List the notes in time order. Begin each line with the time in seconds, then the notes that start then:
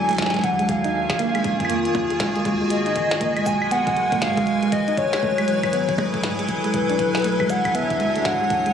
Already playing: D2 B2 F#3 D4 E4 A4 G#5
0.09 A3, closed hi-hat
0.11 closed hi-hat
0.13 closed hi-hat
0.15 closed hi-hat
0.17 snare, closed hi-hat
0.18 G#2, kick, snare, closed hi-hat
0.26 snare
0.30 G#3, snare
0.34 snare, closed hi-hat
0.37 snare
0.39 snare
0.41 D#2 D#3 F#5, kick, snare, closed hi-hat
0.59 G#3 A#3, closed hi-hat
0.69 G#3 F5, kick, closed hi-hat
0.74 F4
0.83 D#4 G#4, closed hi-hat
1.10 G#4, kick, snare, closed hi-hat, claves
1.19 A#3, closed hi-hat
1.35 G#3, closed hi-hat, claves
1.40 F#4
1.44 F#2 G#3, kick, closed hi-hat
1.60 kick, closed hi-hat
1.65 claves
1.70 F2 A#3, closed hi-hat
1.85 closed hi-hat
1.95 D#2 F#3, kick, closed hi-hat, percussion blips
2.10 G#4, closed hi-hat
2.20 C#2 G#3, kick, snare, closed hi-hat
2.36 G#3, closed hi-hat
2.45 D#2 G#3, kick, closed hi-hat
2.61 G#3
2.70 G#1 G#3 D#5, closed hi-hat
2.86 D#4, closed hi-hat
2.96 kick, closed hi-hat
3.11 G#4, snare, closed hi-hat
3.21 A#3, kick, closed hi-hat
3.37 G#3, closed hi-hat, claves
3.46 B1 G#3 G#5, kick, closed hi-hat, shaker
3.62 B4, claves
3.71 B3 F#5, closed hi-hat
3.87 kick, closed hi-hat
3.97 G#3, closed hi-hat
4.12 A#3, kick, closed hi-hat
4.22 G#2 F5, snare, closed hi-hat
4.37 G#3, kick, closed hi-hat
4.47 closed hi-hat
4.63 G#3, closed hi-hat
4.72 F#1 F#3 G#3 D#5, kick, closed hi-hat
4.88 D#4, closed hi-hat
4.97 G#4 C#5, kick, closed hi-hat
5.03 E4
5.13 G#4, snare, closed hi-hat, claves
5.23 A3, kick
5.38 G#3, closed hi-hat, claves
5.46 A1 G#3 A4, closed hi-hat
5.63 kick, closed hi-hat, claves
5.73 G#1 B3, closed hi-hat
5.89 kick, closed hi-hat
5.98 F#1 G#3, closed hi-hat, percussion blips
6.14 A3, kick, closed hi-hat
6.24 G#2, snare, closed hi-hat
6.39 G#3, closed hi-hat
6.49 kick, closed hi-hat
6.64 G#3, closed hi-hat
6.74 B1 B2 G#3 B4, kick, closed hi-hat
6.90 D4, closed hi-hat
6.99 kick, closed hi-hat
7.15 G#4, snare, closed hi-hat
7.17 closed hi-hat
7.20 closed hi-hat
7.22 A3, closed hi-hat
7.24 closed hi-hat
7.32 closed hi-hat
7.36 G#3, kick, closed hi-hat, claves
7.41 C#5
7.50 D2 G#3 F#5, closed hi-hat, shaker
7.65 kick, closed hi-hat, claves
7.75 B3 E5, closed hi-hat
7.90 kick, closed hi-hat
8.00 G#3, closed hi-hat
8.16 A3, closed hi-hat
8.25 G#2 F#5, kick, snare, closed hi-hat
8.41 G#3
8.50 D#2, kick, closed hi-hat
8.66 G#3, closed hi-hat